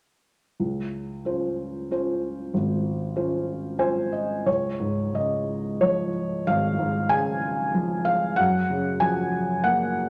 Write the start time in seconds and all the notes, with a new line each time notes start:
0.60 C#2
1.25 C#4 F4 C5
1.91 C#4 F4 C5
2.54 G#1
3.16 C#4 F4 C5
3.78 C#4 F4 C5 G#5
4.12 D#5
4.46 C#2 C#5
4.80 G#2
5.13 C#3 D#5
5.81 F3 C#5
6.47 G#1 F5
6.78 G#2
7.09 C#3 G#5
7.74 F3
8.05 F5
8.36 F#2 F#5
8.70 C#3
9.00 F3 G#5
9.64 A#3 F#5